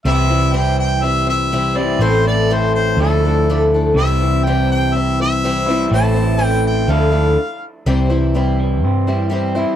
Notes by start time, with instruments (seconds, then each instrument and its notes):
0.05 picked electric bass C2, twelve-string acoustic guitar C3 E3 G3 C4 E4 C5, harmonica E5
0.29 twelve-string acoustic guitar G3 C4 E4 C5
0.53 twelve-string acoustic guitar C3 E3 G3 C4 E4 C5, harmonica G5
0.79 harmonica G5
1.02 twelve-string acoustic guitar G3 C4 E4 C5, harmonica E5
1.27 twelve-string acoustic guitar G3 C4 E4 C5, harmonica E5
1.52 twelve-string acoustic guitar C3 E3 G3 C4 E4 C5
1.75 clean electric guitar E3, twelve-string acoustic guitar G3 C4 E4 C5, harmonica D5
1.79 clean electric guitar C3
1.99 picked electric bass A1, twelve-string acoustic guitar A2 E3 A3 C4 A4 C5, clean electric guitar E4, harmonica C5
2.25 twelve-string acoustic guitar A3 C4 A4 C5, harmonica D5
2.50 twelve-string acoustic guitar A2 E3 A3 C4 A4 C5, harmonica C5
2.75 harmonica C5
2.97 picked electric bass D2, clean electric guitar D3 F3, twelve-string acoustic guitar A3 D4 E4, harmonica A4
3.01 twelve-string acoustic guitar A4
3.25 twelve-string acoustic guitar A3 D4 E4 A4
3.49 twelve-string acoustic guitar D3 F3 A3 D4 E4 A4
3.74 twelve-string acoustic guitar A3 D4 E4 A4
3.94 picked electric bass C2, twelve-string acoustic guitar C3 E3, harmonica E5
3.98 twelve-string acoustic guitar G3 C4 E4 C5
4.22 twelve-string acoustic guitar G3 C4 E4 C5
4.44 twelve-string acoustic guitar C3 E3 G3 C4 E4 C5, harmonica G5
4.71 harmonica G5
4.95 twelve-string acoustic guitar G3 C4 E4 C5, harmonica E5
5.20 twelve-string acoustic guitar G3 C4 E4 C5, harmonica E5
5.44 twelve-string acoustic guitar C3 E3 G3 C4 E4 C5
5.66 clean electric guitar C3 E3 E4, twelve-string acoustic guitar C5
5.70 twelve-string acoustic guitar G3 C4 E4
5.89 picked electric bass A1, clean electric guitar A2
5.93 twelve-string acoustic guitar A2 E3 A3 C4 E4 C5, harmonica A5
6.15 twelve-string acoustic guitar A3 C4 E4 C5
6.39 twelve-string acoustic guitar A2 E3 A3 C4 E4 C5
6.45 harmonica G5
6.67 harmonica G5
6.88 picked electric bass D2, clean electric guitar D3 F3, twelve-string acoustic guitar A3 D4 E4 A4, harmonica F5
7.11 twelve-string acoustic guitar A3 D4 E4 A4
7.86 picked electric bass C2, twelve-string acoustic guitar C3 E3 G3 C4 E4 C5
8.10 clean electric guitar E3, twelve-string acoustic guitar G3 C4 E4 C5
8.34 twelve-string acoustic guitar G3 C4 E4 C5
8.60 clean electric guitar E3
8.84 picked electric bass G2, clean electric guitar C4
9.07 twelve-string acoustic guitar G3 C4 E4 C5
9.30 twelve-string acoustic guitar G3 C4 E4 C5
9.55 twelve-string acoustic guitar G3 C4 E4 C5